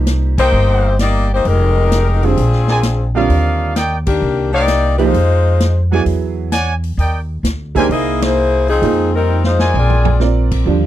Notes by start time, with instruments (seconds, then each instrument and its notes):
Already playing: upright bass C2, upright piano F3 A#3 D#4 G4
0.06 snare, closed hi-hat
0.38 saxophone section A#3 D#4 G4 C5, trumpet section A#4 C5 D#5 G5, kick, crash
0.52 upright bass G1
0.99 saxophone section A#3 D#4 G4 D5, snare, closed hi-hat
1.34 saxophone section A#3 D#4 G4 C5
1.45 upright bass F1, saxophone section G#3 D#4 G4 A#4, open hi-hat
1.92 snare, closed hi-hat
2.22 upright piano D3 G3 C4 F4, saxophone section F3 C4 D4 G#4, open hi-hat
2.37 upright bass A#1, open hi-hat
2.52 snare
2.68 trumpet section A#4 C5 D5 G#5, snare
2.83 snare, closed hi-hat
3.15 upright piano D3 G3 C4 F4, trumpet section A#4 D5 D#5 F5
3.29 upright bass D#2, open hi-hat
3.76 trumpet section A#4 D5 D#5 G5, snare, closed hi-hat
4.07 saxophone section D#3 A#3 D4 G4, kick, crash
4.22 upright bass C2
4.53 saxophone section A#3 D#4 G4 D5, trumpet section C5 D5 D#5 F5
4.68 snare, closed hi-hat
4.98 upright piano F3 A#3 D#4 G4, saxophone section G#3 D#4 F4 C5, open hi-hat
5.14 upright bass F2, open hi-hat
5.60 snare, closed hi-hat
5.92 upright piano F#3 B3 E4 G#4, trumpet section C#5 D5 F#5 G#5
6.06 upright bass E2, open hi-hat
6.52 trumpet section C#5 D5 F#5 G#5, snare, closed hi-hat
6.83 open hi-hat
6.97 upright bass D#2, trumpet section A#4 D5 D#5 G5, open hi-hat
7.43 upright bass D2, snare, closed hi-hat
7.75 saxophone section D#3 A#3 D4 G4, upright piano A#3 D#4 G#4 C5, trumpet section A#4 C5 E5 G#5, kick, open hi-hat
7.89 upright bass C2, saxophone section A#3 E4 G#4 D#5, open hi-hat
8.22 saxophone section A#3 E4 G#4 C5, snare, ride
8.68 saxophone section F3 C4 D#4 G#4, open hi-hat
8.82 upright bass F2, upright piano A#3 D#4 F4 C5, open hi-hat
9.16 saxophone section G3 C4 D#4 A#4
9.44 saxophone section G#3 D#4 F4 C5, snare
9.59 trumpet section A#4 C5 D5 G#5, snare
9.74 upright bass A#1, saxophone section C4 D5, floor tom
9.78 saxophone section F4 G#4
9.90 floor tom
10.05 floor tom
10.20 upright piano C4 F4 A#4 D5, snare
10.51 kick, crash
10.66 upright bass D#2, trombone section D3 G3 D4 F4, upright piano F3 G3 D4